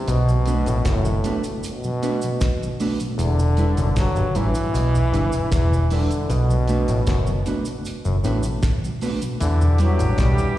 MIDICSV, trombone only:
0, 0, Header, 1, 2, 480
1, 0, Start_track
1, 0, Key_signature, 1, "minor"
1, 0, Tempo, 777807
1, 47, Time_signature, 4, 2, 24, 8
1, 6532, End_track
2, 0, Start_track
2, 0, Title_t, "Trombone"
2, 0, Program_c, 0, 57
2, 0, Note_on_c, 0, 48, 98
2, 65, Note_on_c, 0, 47, 108
2, 75, Note_off_c, 0, 48, 0
2, 540, Note_on_c, 0, 45, 93
2, 549, Note_off_c, 0, 47, 0
2, 849, Note_off_c, 0, 45, 0
2, 1024, Note_on_c, 0, 47, 97
2, 1711, Note_off_c, 0, 47, 0
2, 1975, Note_on_c, 0, 50, 109
2, 2426, Note_off_c, 0, 50, 0
2, 2457, Note_on_c, 0, 54, 108
2, 2695, Note_on_c, 0, 52, 115
2, 2705, Note_off_c, 0, 54, 0
2, 3411, Note_off_c, 0, 52, 0
2, 3414, Note_on_c, 0, 52, 109
2, 3658, Note_on_c, 0, 50, 91
2, 3667, Note_off_c, 0, 52, 0
2, 3895, Note_on_c, 0, 47, 97
2, 3904, Note_off_c, 0, 50, 0
2, 4850, Note_off_c, 0, 47, 0
2, 5814, Note_on_c, 0, 50, 102
2, 6033, Note_off_c, 0, 50, 0
2, 6057, Note_on_c, 0, 54, 97
2, 6295, Note_on_c, 0, 55, 105
2, 6304, Note_off_c, 0, 54, 0
2, 6530, Note_off_c, 0, 55, 0
2, 6532, End_track
0, 0, End_of_file